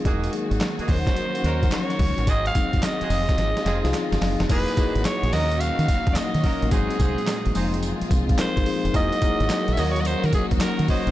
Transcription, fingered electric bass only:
X:1
M:4/4
L:1/16
Q:"Swing 16ths" 1/4=108
K:Ebdor
V:1 name="Fingered electric bass" clef=bass
=E,,,2 z ^G,,, z2 _E,, z3 E,,2 z2 D,, =A,,, | A,,,2 z G,,, z2 F,,, z A,,, z F,,, C,, z =G,,, _G,,, F,,, | =E,,, z2 ^G,,, z ^A,,, _E,,3 E, z E,, z E, z =A,,, | A,,, z C,, z2 A,,, F,,,3 z C,,2 z A,,, z F,,, |
=E,,, z2 ^G,,, z ^A,,, _E,,3 E, z E,, z E, z =A,,, |]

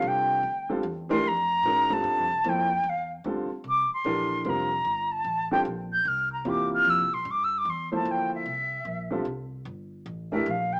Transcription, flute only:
X:1
M:3/4
L:1/8
Q:"Swing" 1/4=150
K:Cmix
V:1 name="Flute"
g3 z2 c' | b3 a3 | g2 f z3 | d' c'3 b2- |
b a2 g z g' | f' b d' f' e' c' | (3d' e' d' c' a g e- | e4 z2 |
z3 e f g |]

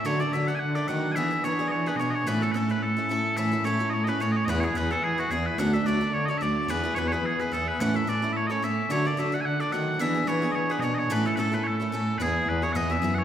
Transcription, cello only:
X:1
M:4/4
L:1/16
Q:"Swing" 1/4=217
K:A
V:1 name="Cello" clef=bass
D,4 D,4 D,4 ^D,4 | E,4 E,4 E,4 B,,4 | A,,4 A,,4 A,,4 A,,4 | A,,4 A,,4 A,,4 A,,4 |
E,,4 E,,4 E,4 E,,4 | D,,4 D,,4 D,4 D,,4 | E,,4 E,,4 E,4 E,,4 | A,,4 A,,4 A,,4 A,,4 |
D,4 D,4 D,4 ^D,4 | E,4 E,4 E,4 B,,4 | A,,4 A,,4 A,,4 A,,4 | [K:E] E,,4 E,,2 z2 E,, E,,3 F,,4 |]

